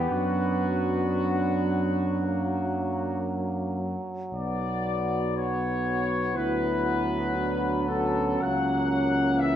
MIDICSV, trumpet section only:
0, 0, Header, 1, 2, 480
1, 0, Start_track
1, 0, Key_signature, 2, "minor"
1, 0, Tempo, 1071429
1, 46, Time_signature, 4, 2, 24, 8
1, 1006, Tempo, 1045296
1, 1966, Tempo, 1003344
1, 3406, Tempo, 1060071
1, 3886, Tempo, 981997
1, 4449, End_track
2, 0, Start_track
2, 0, Title_t, "Trumpet section"
2, 0, Program_c, 0, 61
2, 0, Note_on_c, 0, 67, 48
2, 44, Note_on_c, 0, 66, 49
2, 49, Note_off_c, 0, 67, 0
2, 1490, Note_off_c, 0, 66, 0
2, 1965, Note_on_c, 0, 74, 54
2, 2434, Note_off_c, 0, 74, 0
2, 2452, Note_on_c, 0, 73, 54
2, 2928, Note_off_c, 0, 73, 0
2, 2930, Note_on_c, 0, 71, 56
2, 3644, Note_on_c, 0, 69, 52
2, 3646, Note_off_c, 0, 71, 0
2, 3881, Note_off_c, 0, 69, 0
2, 3890, Note_on_c, 0, 78, 59
2, 4367, Note_on_c, 0, 76, 67
2, 4370, Note_off_c, 0, 78, 0
2, 4449, Note_off_c, 0, 76, 0
2, 4449, End_track
0, 0, End_of_file